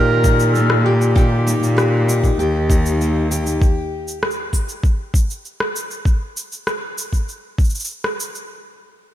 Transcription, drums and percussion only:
0.24 kick, cabasa
0.40 cabasa
0.55 cabasa
0.70 cross-stick
1.02 cabasa
1.16 kick, cabasa
1.48 cabasa
1.63 cabasa
1.78 cross-stick, cabasa
2.09 cabasa
2.24 kick, cabasa
2.40 cabasa
2.70 kick, cabasa
2.86 cabasa
3.01 cabasa
3.32 cabasa
3.47 cabasa
3.62 kick, cabasa
4.08 cabasa
4.23 cross-stick
4.31 cabasa
4.53 kick, cabasa
4.69 cabasa
4.83 kick, cabasa
5.14 kick, cabasa
5.30 cabasa
5.45 cabasa
5.60 cross-stick
5.76 cabasa
5.91 cabasa
6.05 kick, cabasa
6.37 cabasa
6.52 cabasa
6.67 cross-stick, cabasa
6.98 cabasa
7.13 kick, cabasa
7.29 cabasa
7.58 kick, cabasa
7.64 cabasa
7.70 cabasa
7.75 cabasa
7.80 cabasa
7.85 cabasa
7.90 cabasa
8.04 cross-stick
8.20 cabasa
8.35 cabasa

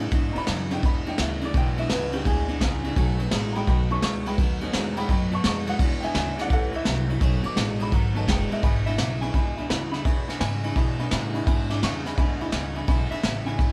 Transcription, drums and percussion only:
0.11 kick, ride
0.35 ride
0.47 snare, ride
0.70 snare, ride
0.83 kick, ride
1.06 ride
1.18 snare, ride
1.41 ride
1.54 kick, ride
1.77 ride
1.90 snare, ride
2.12 ride
2.25 kick, ride
2.48 ride
2.61 kick, snare, ride
2.84 ride
2.96 kick, ride
3.19 ride
3.31 snare, ride
3.55 ride
3.67 kick, ride
3.90 ride
4.02 snare, ride
4.26 ride
4.38 kick, ride
4.61 ride
4.73 snare, ride
4.96 ride
5.09 kick, ride
5.31 ride
5.44 snare, ride
5.67 ride
5.79 kick, ride
6.02 ride
6.15 snare, ride
6.38 snare, ride
6.50 kick, ride
6.73 ride
6.85 snare, ride
7.09 ride
7.21 kick, ride
7.43 ride
7.57 snare, ride
7.79 ride
7.92 kick, ride
8.16 ride
8.28 kick, snare, ride
8.51 ride
8.63 kick, ride
8.86 ride
8.98 snare, ride
9.22 ride
9.34 kick, ride
9.58 ride
9.70 snare, ride
9.93 snare, ride
10.05 kick, ride
10.29 snare, ride
10.41 snare, ride
10.64 ride
10.76 kick, ride
10.99 ride
11.11 snare, ride
11.35 ride
11.47 kick, ride
11.70 snare, ride
11.83 snare, ride
12.06 snare, ride
12.18 kick, ride
12.40 ride
12.52 snare, ride
12.75 ride
12.87 kick, ride
13.11 ride
13.23 snare, ride
13.47 ride
13.59 kick, ride

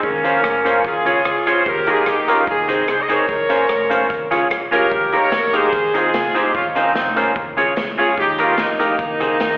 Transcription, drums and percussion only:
0.03 kick, closed hi-hat
0.24 closed hi-hat
0.44 cross-stick, closed hi-hat
0.66 closed hi-hat
0.85 kick, closed hi-hat
1.06 closed hi-hat
1.25 cross-stick, closed hi-hat
1.47 cross-stick, closed hi-hat
1.66 kick, closed hi-hat
1.87 closed hi-hat
2.06 cross-stick, closed hi-hat
2.28 closed hi-hat
2.47 kick, closed hi-hat
2.69 closed hi-hat
2.88 cross-stick, closed hi-hat
3.09 closed hi-hat
3.29 kick, closed hi-hat
3.50 closed hi-hat
3.69 cross-stick, closed hi-hat
3.91 closed hi-hat
4.10 kick, closed hi-hat
4.32 closed hi-hat
4.50 cross-stick, closed hi-hat
4.72 closed hi-hat
4.91 kick, closed hi-hat
5.12 closed hi-hat
5.32 snare, closed hi-hat
5.54 closed hi-hat
5.73 kick, closed hi-hat
5.94 closed hi-hat
6.14 snare, closed hi-hat
6.36 closed hi-hat
6.55 kick, closed hi-hat
6.76 closed hi-hat
6.95 snare, closed hi-hat
7.17 closed hi-hat
7.36 kick, closed hi-hat
7.58 closed hi-hat
7.76 snare, closed hi-hat
7.99 open hi-hat
8.17 kick, closed hi-hat
8.38 closed hi-hat
8.58 snare, closed hi-hat
8.80 closed hi-hat
8.99 kick, closed hi-hat
9.21 closed hi-hat
9.40 snare, closed hi-hat

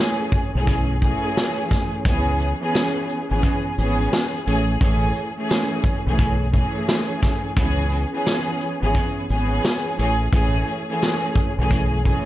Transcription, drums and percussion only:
0.32 kick, shaker
0.67 kick, closed hi-hat
1.02 kick, shaker
1.37 snare, closed hi-hat
1.71 kick, snare, closed hi-hat, shaker
2.05 kick, closed hi-hat
2.40 shaker
2.75 snare, closed hi-hat
3.09 shaker
3.43 kick, closed hi-hat
3.78 shaker
4.13 snare, closed hi-hat
4.48 closed hi-hat, shaker
4.81 kick, closed hi-hat
5.16 shaker
5.50 snare, closed hi-hat
5.84 kick, shaker
6.19 kick, closed hi-hat
6.54 kick, shaker
6.88 snare, closed hi-hat
7.23 kick, snare, closed hi-hat, shaker
7.57 kick, closed hi-hat
7.92 closed hi-hat, shaker
8.26 snare, closed hi-hat
8.61 shaker
8.95 kick, closed hi-hat
9.30 shaker
9.64 snare, closed hi-hat
9.99 closed hi-hat, shaker
10.33 kick, closed hi-hat
10.68 shaker
11.02 snare, closed hi-hat
11.36 kick, shaker
11.71 kick, closed hi-hat
12.05 kick, shaker

